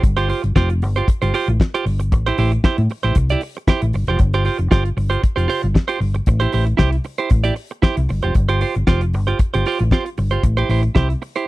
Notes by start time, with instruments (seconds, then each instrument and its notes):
0.03 fingered electric bass G1, muted clean electric guitar stroke, kick, closed hi-hat
0.17 clean electric guitar F4 G4 C5, closed hi-hat
0.28 clean electric guitar F4 G4 C5, open hi-hat
0.43 fingered electric bass G1, muted clean electric guitar stroke, closed hi-hat
0.56 fingered electric bass F1, clean electric guitar F4 G4 C5, kick, snare
0.70 muted clean electric guitar stroke, closed hi-hat
0.82 fingered electric bass G1, muted clean electric guitar stroke, open hi-hat
0.96 clean electric guitar F4 G4 C5, closed hi-hat
1.08 muted clean electric guitar stroke, kick, closed hi-hat
1.22 fingered electric bass G1, clean electric guitar F4 G4 C5, closed hi-hat
1.34 clean electric guitar F4 G4 C5, open hi-hat
1.48 fingered electric bass A1, closed hi-hat
1.60 muted clean electric guitar stroke, kick, snare
1.74 clean electric guitar F4 G4 C5, closed hi-hat
1.86 fingered electric bass G1, muted clean electric guitar stroke, open hi-hat
2.00 muted clean electric guitar stroke, closed hi-hat
2.12 fingered electric bass A1, muted clean electric guitar stroke, kick, closed hi-hat
2.26 clean electric guitar E4 G4 C5, closed hi-hat
2.38 fingered electric bass A1, clean electric guitar E4 G4 C5, open hi-hat
2.52 muted clean electric guitar stroke, closed hi-hat
2.64 clean electric guitar E4 G4 C5, muted fingered electric bass stroke, kick, snare
2.78 fingered electric bass A2, muted clean electric guitar stroke, closed hi-hat
2.90 muted clean electric guitar stroke, open hi-hat
3.03 fingered electric bass A1, clean electric guitar E4 G4 C5, closed hi-hat
3.15 fingered electric bass C2, muted clean electric guitar stroke, kick, closed hi-hat
3.30 clean electric guitar E4 G4 D5, closed hi-hat
3.41 muted clean electric guitar stroke, open hi-hat
3.55 muted clean electric guitar stroke, closed hi-hat
3.67 clean electric guitar E4 G4 C5, kick, snare
3.82 fingered electric bass A1, muted clean electric guitar stroke, closed hi-hat
3.93 fingered electric bass G1, muted clean electric guitar stroke, open hi-hat
4.07 fingered electric bass F1, clean electric guitar F4 G4 C5, closed hi-hat
4.19 fingered electric bass G1, muted clean electric guitar stroke, kick, closed hi-hat
4.33 clean electric guitar F4 G4 C5, closed hi-hat
4.45 clean electric guitar F4 G4 C5, open hi-hat
4.59 fingered electric bass F1, muted clean electric guitar stroke, closed hi-hat
4.71 fingered electric bass G1, clean electric guitar F4 G4 C5, kick, snare
4.85 muted clean electric guitar stroke, closed hi-hat
4.97 fingered electric bass G1, muted clean electric guitar stroke, open hi-hat
5.10 clean electric guitar F4 G4 C5, closed hi-hat
5.23 muted clean electric guitar stroke, kick, closed hi-hat
5.36 fingered electric bass F1, clean electric guitar F4 G4 C5, closed hi-hat
5.48 clean electric guitar F4 G4 C5, open hi-hat
5.63 fingered electric bass G1, muted clean electric guitar stroke, closed hi-hat
5.74 muted clean electric guitar stroke, kick, snare
5.88 clean electric guitar F4 G4 C5, closed hi-hat
6.00 fingered electric bass G1, muted clean electric guitar stroke, open hi-hat
6.14 muted clean electric guitar stroke, closed hi-hat
6.26 fingered electric bass A1, muted clean electric guitar stroke, kick, closed hi-hat
6.40 clean electric guitar E4 G4 C5, closed hi-hat
6.52 fingered electric bass A1, clean electric guitar E4 G4 C5, open hi-hat
6.66 muted clean electric guitar stroke, closed hi-hat
6.77 fingered electric bass C2, clean electric guitar E4 G4 C5, kick, snare
6.91 muted clean electric guitar stroke, closed hi-hat
7.04 muted clean electric guitar stroke, open hi-hat
7.18 clean electric guitar E4 G4 C5, closed hi-hat
7.30 fingered electric bass A1, muted clean electric guitar stroke, kick, closed hi-hat
7.44 clean electric guitar E4 G4 D5, closed hi-hat
7.55 muted clean electric guitar stroke, open hi-hat
7.70 muted clean electric guitar stroke, closed hi-hat
7.82 clean electric guitar E4 G4 C5, kick, snare
7.97 fingered electric bass C2, muted clean electric guitar stroke, closed hi-hat
8.09 fingered electric bass G1, muted clean electric guitar stroke, open hi-hat
8.22 fingered electric bass F1, clean electric guitar F4 G4 C5, closed hi-hat
8.35 fingered electric bass G1, muted clean electric guitar stroke, kick, closed hi-hat
8.49 clean electric guitar F4 G4 C5, closed hi-hat
8.61 clean electric guitar F4 G4 C5, open hi-hat
8.75 fingered electric bass G1, muted clean electric guitar stroke, closed hi-hat
8.87 fingered electric bass F1, clean electric guitar F4 G4 C5, kick, snare
9.01 muted clean electric guitar stroke, closed hi-hat
9.13 fingered electric bass G1, muted clean electric guitar stroke, open hi-hat
9.27 clean electric guitar F4 G4 C5, closed hi-hat
9.39 muted clean electric guitar stroke, kick, closed hi-hat
9.54 fingered electric bass G1, clean electric guitar F4 G4 C5, closed hi-hat
9.66 clean electric guitar F4 G4 C5, open hi-hat
9.79 fingered electric bass A1, muted clean electric guitar stroke, closed hi-hat
9.91 clean electric guitar F4 G4 C5, kick, snare
10.06 muted clean electric guitar stroke, closed hi-hat
10.17 fingered electric bass G1, muted clean electric guitar stroke, open hi-hat
10.31 clean electric guitar F4 G4 C5, closed hi-hat
10.43 fingered electric bass A1, muted clean electric guitar stroke, kick, closed hi-hat
10.57 clean electric guitar E4 G4 C5, closed hi-hat
10.69 fingered electric bass A1, clean electric guitar E4 G4 C5, open hi-hat
10.83 muted clean electric guitar stroke, closed hi-hat
10.95 fingered electric bass C2, clean electric guitar E4 G4 C5, kick, snare
11.09 muted clean electric guitar stroke, closed hi-hat
11.22 muted clean electric guitar stroke, open hi-hat
11.36 clean electric guitar E4 G4 C5, closed hi-hat